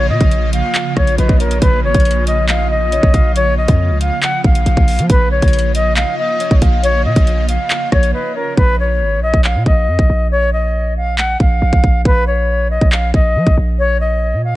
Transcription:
Already playing: 808-style bass A#1, ambient pad C#3 F3 A#3 F4
0.09 808-style bass A#2, flute D#5
0.21 808-style bass A#1, kick, closed hi-hat
0.31 closed hi-hat
0.53 flute F5, closed hi-hat
0.75 clap, closed hi-hat
0.97 808-style bass A#1, flute C#5, kick, cross-stick
1.07 closed hi-hat
1.18 808-style bass A#1, flute B4, soft synth lead D#5, closed hi-hat
1.29 808-style bass A#1, kick
1.40 flute A#4, soft synth lead C#5, closed hi-hat
1.51 closed hi-hat
1.61 808-style bass A#1, flute B4, kick, closed hi-hat
1.84 808-style bass G#1, flute C#5
1.94 808-style bass A#1, kick, closed hi-hat
2.00 closed hi-hat
2.05 closed hi-hat
2.11 closed hi-hat
2.27 flute D#5, closed hi-hat
2.49 soft synth lead D#5, flute F5, clap, closed hi-hat
2.71 flute D#5
2.92 soft synth lead C#5, closed hi-hat
3.03 808-style bass A#1, kick
3.14 808-style bass A#1, soft synth lead F5, kick, closed hi-hat
3.36 flute C#5, closed hi-hat
3.57 flute D#5
3.68 808-style bass F2, kick, closed hi-hat
3.90 808-style bass C#2
4.01 flute F5, closed hi-hat
4.23 flute F#5, clap, closed hi-hat
4.44 808-style bass A#1, flute F5, kick
4.55 closed hi-hat
4.66 808-style bass A#1, closed hi-hat
4.77 808-style bass A#1, kick
4.88 open hi-hat
4.99 808-style bass F3, closed hi-hat
5.10 808-style bass A#1, ambient pad C#3 F3 A#3 F4, flute B4, kick, closed hi-hat
5.31 flute C#5
5.42 808-style bass A#1, kick, closed hi-hat
5.48 closed hi-hat
5.53 closed hi-hat
5.59 closed hi-hat
5.75 flute D#5, closed hi-hat
5.96 soft synth lead D#5, flute F5, clap, closed hi-hat
6.19 flute D#5
6.40 soft synth lead C#5, closed hi-hat
6.51 808-style bass A#1, kick
6.62 808-style bass A#1, soft synth lead F5, kick, closed hi-hat
6.83 flute C#5, closed hi-hat
7.05 808-style bass A#2, flute D#5
7.16 808-style bass A#1, kick, closed hi-hat
7.27 closed hi-hat
7.49 flute F5, closed hi-hat
7.70 clap, closed hi-hat
7.92 808-style bass A#1, flute C#5, kick, cross-stick
8.03 closed hi-hat
8.14 flute B4, soft synth lead D#5
8.36 flute A#4, soft synth lead C#5
8.57 808-style bass A#1, flute B4, kick
8.80 flute C#5
9.01 808-style bass G#1
9.17 808-style bass A#1
9.23 flute D#5
9.34 808-style bass A#1, kick
9.44 flute F5, clap
9.55 808-style bass A#2
9.66 808-style bass A#1, flute D#5, kick
9.88 808-style bass F2
9.99 808-style bass A#1, kick
10.10 808-style bass A#1
10.31 flute C#5
10.53 flute D#5
10.97 flute F5
11.18 flute F#5, clap
11.40 808-style bass A#1, flute F5, kick
11.62 808-style bass A#1
11.73 808-style bass A#1, kick
11.84 808-style bass A#1, kick
12.05 808-style bass A#1, flute B4, kick
12.27 flute C#5
12.70 flute D#5
12.81 808-style bass A#1, kick
12.92 flute F5, clap
13.14 808-style bass A#1, flute D#5, kick
13.36 808-style bass F3
13.47 808-style bass A#1, kick
13.57 808-style bass A#1
13.79 flute C#5
14.01 flute D#5
14.33 808-style bass A#2
14.44 flute F5

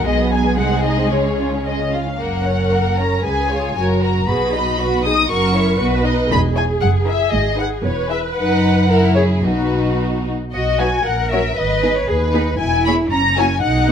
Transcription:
0.04 double bass section B1, cello section B2, violin section G#3 G#4 D#5, viola section G#3 B3
0.18 violin section B3
0.31 violin section D#4 G#5
0.45 violin section B3
0.57 double bass section C2, cello section C3, violin section G#3 F#5, viola section D#4
0.71 violin section C4
0.84 violin section D#4 D#5
0.99 violin section C4
1.11 double bass section C#2, cello section C#3, violin section G#3 C#5, viola section C#4
1.27 violin section C#4
1.41 violin section F4
1.53 violin section C#4
1.66 violin section G#3 D#5
1.81 violin section C#4
1.93 violin section F4 F5
2.06 violin section C#4
2.18 double bass section F#1, cello section F#2, violin section A#3 A#4 F#5, viola section A#4
2.44 violin section C#4 C#5
2.71 violin section A#3 A#4
2.98 violin section C#4 C#5 A#5
3.24 cello section C#2, double bass section C#2, violin section G#4 B4 G#5, viola section G#4
3.51 violin section F4 C#5
3.76 double bass section F#1, cello section F#2, viola section F#4, violin section A#4 C#5 G#5
4.02 violin section F#4 A#4 A#5
4.27 double bass section B1, cello section B2, violin section F#4 B4 B5, viola section G#4
4.53 violin section D#4 D#5, viola section F#4
4.79 violin section F#4 B4, viola section F#4
5.04 violin section D#4 D#5 D#6, viola section G#4
5.30 double bass section F#1, cello section F#2, violin section F#4 A#4 C#6, viola section A#4
5.54 violin section E4 C#5
5.79 double bass section B1, cello section B2, violin section F#4 B4, viola section B4
6.04 violin section D#4 D#5
6.31 double bass section E1, cello section E2, viola section G#4, violin section B5
6.55 violin section E4 C#5 G#5
6.81 double bass section F#1, cello section F#2, violin section F#5
7.06 violin section E4 A#4 E5
7.32 double bass section G#1, cello section G#2, violin section D#5
7.57 violin section D#4 B4 F#5
7.84 double bass section E1, cello section E2, viola section B4, violin section C#5
8.09 violin section E4 G#4 E5
8.36 double bass section F#1, cello section F#2, violin section D#4 B4 F#5
8.89 violin section E4 A#4, viola section A#4
9.15 viola section G#4, violin section G#4 C#5
9.42 double bass section B1, cello section B2, violin section D#4 F#4 B4, viola section F#4
10.52 double bass section B1, cello section F#4, violin section D#5
10.78 viola section F#3 D#4, violin section F#4 B4 G#5
11.05 double bass section A#1, cello section A#4, violin section F#5
11.31 viola section F#3 C#4, violin section F#4 C#5 E5
11.56 double bass section G#1, cello section B4, violin section D#5
11.83 viola section B3 D#4, violin section G#4 B4
11.96 violin section C#5
12.08 double bass section D#2, cello section G#4, violin section B4
12.33 viola section B3 D#4, cello section D#4, violin section G#4 B4
12.59 double bass section E1, cello section E4, violin section G#5
12.85 viola section B3 E4, violin section G#4 C#5 B5
13.11 double bass section F#1, cello section C#4, violin section A#5
13.36 viola section A#3 E4, violin section F#4 C#5 G#5
13.62 double bass section B1, cello section D#4, violin section F#5
13.87 viola section B3 D#4

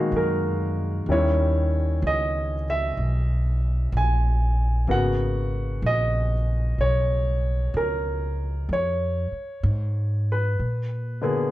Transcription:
Already playing: grand piano D#3 G#3 A#3 F#4 D5 D#5 F5
0.12 upright bass F#2
0.16 grand piano A#4
1.06 upright bass D#2, grand piano D#3 G3 C#4
1.11 grand piano E4 C#5
2.02 upright bass C#2
2.07 grand piano D#5
2.70 grand piano E5
2.97 upright bass B1
3.92 upright bass A#1
3.97 grand piano G#5
4.87 upright bass G#1, grand piano C#3 A#3 B3 F#4 F#5
5.82 upright bass A#1
5.86 grand piano D#5
6.78 upright bass B1, grand piano C#5
7.74 upright bass C#2, grand piano A#4
8.69 upright bass F2
8.73 grand piano C#5
9.32 muted upright bass stroke
9.63 upright bass G#2
10.32 grand piano B4
10.59 upright bass A#2
11.22 grand piano D3 A#3 B3 G#4

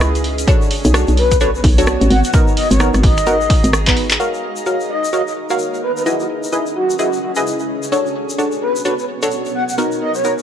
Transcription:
Already playing: fm bass C#2, ambient pad C#4 G#4 D#5, synth stab E4 G#4 B4 D#5
0.00 cross-stick, shaker
0.15 closed hi-hat, shaker
0.24 open hi-hat
0.38 closed hi-hat, shaker
0.47 ambient pad B3, synth stab D4 F#4 A4 C#5, finger snap, kick, shaker
0.60 ambient pad C#5, shaker
0.66 ambient pad F#4
0.71 open hi-hat
0.84 fm bass B1, closed hi-hat, shaker
0.94 synth stab D4 F#4 A4 C#5, cross-stick, shaker
1.08 fm bass B1, closed hi-hat, shaker
1.17 soft synth lead B4, open hi-hat
1.31 finger snap, kick, closed hi-hat, shaker
1.40 synth stab D4 F#4 A4 C#5, soft synth lead B4, shaker
1.55 soft synth lead B4, shaker
1.64 fm bass B1, kick, open hi-hat
1.78 synth stab D4 F#4 A4 C#5, closed hi-hat, shaker
1.86 cross-stick, shaker
2.01 fm bass A1, closed hi-hat, shaker
2.10 fm bass G#1, ambient pad G#4, soft synth lead F#5, open hi-hat
2.24 ambient pad D#5, soft synth lead F#5, closed hi-hat, shaker
2.33 synth stab B3 D#4 F#4 A#4, finger snap, kick, shaker
2.38 ambient pad A#5
2.47 shaker
2.57 soft synth lead D#5, open hi-hat
2.71 fm bass G#1, soft synth lead C#5, closed hi-hat, shaker
2.80 synth stab B3 D#4 F#4 A#4, cross-stick, shaker
2.94 fm bass G#1, cross-stick, closed hi-hat, shaker
3.03 soft synth lead D#5, kick, open hi-hat
3.17 finger snap, closed hi-hat, shaker
3.26 synth stab B3 D#4 F#4 A#4, shaker
3.41 shaker
3.50 finger snap, kick, open hi-hat
3.64 fm bass G#1, closed hi-hat, shaker
3.73 cross-stick, shaker
3.86 synth stab B3 D#4 F#4 B4, kick, clap, closed hi-hat, shaker
3.97 open hi-hat
4.10 clap, closed hi-hat, shaker
4.20 ambient pad D#4, synth stab F#4 A#4 C#5 F5, shaker
4.29 ambient pad A#4
4.34 shaker
4.56 shaker
4.66 synth stab F#4 A#4 C#5 F5, shaker
4.80 shaker
4.89 soft synth lead D#5
5.04 shaker
5.12 synth stab F#4 A#4 C#5 F5, soft synth lead D#5, shaker
5.27 soft synth lead D#5, shaker
5.50 synth stab F#4 A#4 C#5 F5, shaker
5.59 shaker
5.74 shaker
5.83 ambient pad C#4, soft synth lead B4
5.97 soft synth lead B4, shaker
6.06 synth stab E4 G#4 B4 D#5, soft synth lead F#4, ambient pad G#4, shaker
6.20 soft synth lead F#4, shaker
6.44 shaker
6.52 synth stab E4 G#4 B4 D#5, shaker
6.66 shaker
6.75 soft synth lead F#4
6.90 shaker
6.99 synth stab E4 G#4 B4 D#5, soft synth lead F#4, shaker
7.13 shaker
7.22 soft synth lead F#4
7.35 synth stab E4 G#4 B4 D#5, soft synth lead F#4, shaker
7.47 shaker
7.59 shaker
7.83 shaker
7.92 ambient pad B3, synth stab D4 F#4 A4 C#5, shaker
8.06 shaker
8.15 ambient pad F#4
8.29 shaker
8.35 synth stab D4 F#4 A4 C#5, ambient pad C#5
8.39 shaker
8.52 shaker
8.62 soft synth lead B4
8.76 shaker
8.85 synth stab D4 F#4 A4 C#5, soft synth lead B4, shaker
8.99 soft synth lead B4, shaker
9.22 synth stab D4 F#4 A4 C#5, shaker
9.31 shaker
9.46 shaker
9.55 ambient pad G#4, soft synth lead F#5
9.69 soft synth lead F#5, shaker
9.73 ambient pad D#5
9.78 synth stab B3 D#4 F#4 A#4, shaker
9.92 shaker
10.01 soft synth lead D#5
10.14 soft synth lead C#5, shaker
10.24 synth stab B3 D#4 F#4 A#4, shaker
10.38 shaker

